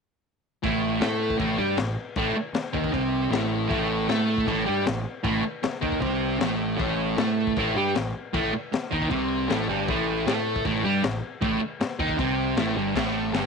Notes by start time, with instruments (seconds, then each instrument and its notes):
0.63 picked electric bass A1, distorted electric guitar A2 A3, kick, crash
1.01 picked electric bass A2, distorted electric guitar A3 A4, snare, crash
1.30 kick
1.38 picked electric bass A1, distorted electric guitar A2 A3, kick, crash
1.58 picked electric bass G2, distorted electric guitar G3 G4
1.77 picked electric bass A1, distorted electric guitar A2, snare, crash
2.16 picked electric bass A1, distorted electric guitar A2 A3, kick, crash
2.37 muted distorted electric guitar stroke
2.53 muted picked electric bass stroke, muted distorted electric guitar stroke, snare, crash
2.73 picked electric bass D#2, distorted electric guitar D#3 D#4, kick
2.84 kick
2.92 picked electric bass C2, distorted electric guitar C3 C4, kick, crash
3.30 picked electric bass A1, distorted electric guitar A2 A3, snare, crash
3.69 picked electric bass A1, distorted electric guitar A2 A3, kick, crash
4.08 picked electric bass A2, distorted electric guitar A3 A4, snare, crash
4.38 kick
4.46 picked electric bass A1, distorted electric guitar A2 A3, kick, crash
4.65 distorted electric guitar G3 G4
4.69 picked electric bass G2
4.85 picked electric bass A1, distorted electric guitar A2, snare, crash
5.23 picked electric bass A1, distorted electric guitar A2 A3, kick, crash
5.44 muted distorted electric guitar stroke
5.63 muted distorted electric guitar stroke, muted picked electric bass stroke, snare, crash
5.81 picked electric bass D#2, distorted electric guitar D#3 D#4, kick
5.92 kick
6.00 picked electric bass C2, distorted electric guitar C3 C4, kick, crash
6.40 picked electric bass A1, distorted electric guitar A2 A3, snare, crash
6.78 picked electric bass A1, distorted electric guitar A2 A3, kick, crash
7.17 picked electric bass A2, distorted electric guitar A3 A4, snare, crash
7.47 kick
7.56 picked electric bass A1, distorted electric guitar A2 A3, kick, crash
7.75 picked electric bass G2, distorted electric guitar G3 G4
7.95 picked electric bass A1, distorted electric guitar A2, snare, crash
8.33 picked electric bass A1, distorted electric guitar A2 A3, kick, crash
8.54 muted distorted electric guitar stroke
8.73 muted distorted electric guitar stroke, muted picked electric bass stroke, snare, crash
8.91 picked electric bass D#2, distorted electric guitar D#3 D#4, kick
9.02 kick
9.10 picked electric bass C2, distorted electric guitar C3 C4, kick, crash
9.48 picked electric bass A1, distorted electric guitar A2 A3, snare, crash
9.68 picked electric bass G1, distorted electric guitar G2 G3
9.88 picked electric bass A1, distorted electric guitar A2 A3, kick, crash
10.26 picked electric bass A2, distorted electric guitar A3 A4, snare, crash
10.56 kick
10.65 picked electric bass A1, distorted electric guitar A2 A3, kick, crash
10.84 picked electric bass G2, distorted electric guitar G3 G4
11.03 picked electric bass A1, distorted electric guitar A2, snare, crash
11.41 picked electric bass A1, distorted electric guitar A2 A3, kick, crash
11.61 muted distorted electric guitar stroke
11.80 muted picked electric bass stroke, muted distorted electric guitar stroke, snare, crash
11.99 picked electric bass D#2, distorted electric guitar D#3 D#4, kick
12.09 kick
12.17 picked electric bass C2, distorted electric guitar C3 C4, kick, crash
12.57 picked electric bass A1, distorted electric guitar A2 A3, snare, crash
12.76 picked electric bass G1, distorted electric guitar G2 G3
12.95 picked electric bass A1, distorted electric guitar A2 A3, kick, snare, crash
13.31 picked electric bass G1, distorted electric guitar G2 G3, snare, open hi-hat